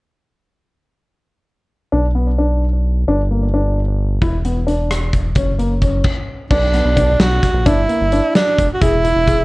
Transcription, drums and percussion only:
4.22 kick, closed hi-hat
4.45 closed hi-hat
4.68 closed hi-hat
4.91 cross-stick, closed hi-hat
5.13 kick, closed hi-hat
5.35 kick, closed hi-hat
5.59 closed hi-hat
5.82 kick, closed hi-hat
6.04 kick, crash
6.51 kick, crash
6.74 snare, closed hi-hat
6.97 kick, closed hi-hat
7.20 snare, closed hi-hat
7.43 kick, snare, closed hi-hat
7.66 kick, closed hi-hat
7.89 closed hi-hat
8.12 closed hi-hat
8.35 snare, closed hi-hat
8.58 kick, closed hi-hat
8.81 kick, closed hi-hat
9.04 closed hi-hat
9.27 kick, closed hi-hat

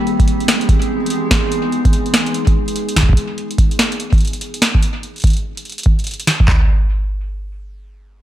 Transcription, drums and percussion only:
0.07 closed hi-hat
0.20 kick, closed hi-hat
0.28 closed hi-hat
0.40 closed hi-hat
0.48 snare
0.61 closed hi-hat
0.69 kick, closed hi-hat
0.82 closed hi-hat
1.06 closed hi-hat
1.10 closed hi-hat
1.31 kick, snare
1.52 closed hi-hat
1.72 closed hi-hat
1.85 kick, closed hi-hat
1.93 closed hi-hat
2.06 closed hi-hat
2.14 snare
2.26 closed hi-hat
2.34 closed hi-hat
2.47 kick, closed hi-hat
2.68 closed hi-hat
2.76 closed hi-hat
2.89 closed hi-hat
2.96 kick, snare
3.03 kick
3.09 kick
3.13 kick, closed hi-hat
3.38 closed hi-hat
3.51 closed hi-hat
3.58 kick, closed hi-hat
3.71 closed hi-hat
3.79 snare
3.92 closed hi-hat
4.00 closed hi-hat
4.13 kick, closed hi-hat
4.18 closed hi-hat
4.21 closed hi-hat
4.25 closed hi-hat
4.27 closed hi-hat
4.33 closed hi-hat
4.41 closed hi-hat
4.54 closed hi-hat
4.62 snare
4.75 kick
4.83 closed hi-hat
5.03 closed hi-hat
5.16 closed hi-hat
5.18 closed hi-hat
5.20 closed hi-hat
5.22 closed hi-hat
5.24 kick, closed hi-hat
5.27 closed hi-hat
5.30 closed hi-hat
5.33 closed hi-hat
5.37 closed hi-hat
5.57 closed hi-hat
5.65 closed hi-hat
5.70 closed hi-hat
5.72 closed hi-hat
5.78 closed hi-hat
5.83 kick, closed hi-hat
5.99 closed hi-hat
6.04 closed hi-hat
6.07 closed hi-hat
6.11 closed hi-hat
6.14 closed hi-hat
6.20 closed hi-hat
6.27 snare
6.40 kick
6.48 kick, clap, floor tom

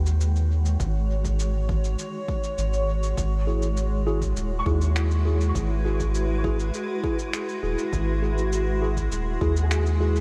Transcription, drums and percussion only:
0.06 cabasa
0.21 cabasa
0.36 cabasa
0.65 cabasa
0.80 kick, cabasa
1.25 kick, cabasa
1.39 cabasa
1.69 kick
1.84 cabasa
1.99 cabasa
2.28 kick
2.44 cabasa
2.58 cabasa
2.73 cabasa
3.03 cabasa
3.18 kick, cabasa
3.62 cabasa
3.77 cabasa
4.22 kick, cabasa
4.36 cabasa
4.66 kick
4.81 cabasa
4.96 finger snap, cabasa
5.11 cabasa
5.41 cabasa
5.55 kick, cabasa
6.00 kick, cabasa
6.15 cabasa
6.44 kick
6.59 cabasa
6.74 cabasa
7.04 kick
7.19 cabasa
7.33 finger snap, cabasa
7.49 cabasa
7.78 cabasa
7.93 kick, cabasa
8.38 cabasa
8.52 cabasa
8.97 kick, cabasa
9.12 cabasa
9.41 kick
9.56 cabasa
9.71 finger snap, cabasa
9.86 cabasa
10.16 cabasa

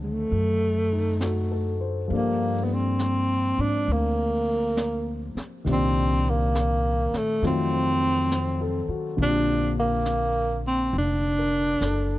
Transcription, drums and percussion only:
0.30 brush sweep
1.21 snare, hi-hat pedal
2.10 brush sweep
2.99 snare, hi-hat pedal
3.88 brush sweep
4.77 snare, hi-hat pedal
5.37 snare
5.67 brush sweep, snare
6.55 snare, hi-hat pedal
7.14 snare
7.44 brush sweep, snare
8.31 snare, hi-hat pedal
9.18 brush sweep
10.05 snare, hi-hat pedal
10.94 brush sweep
11.81 snare, hi-hat pedal

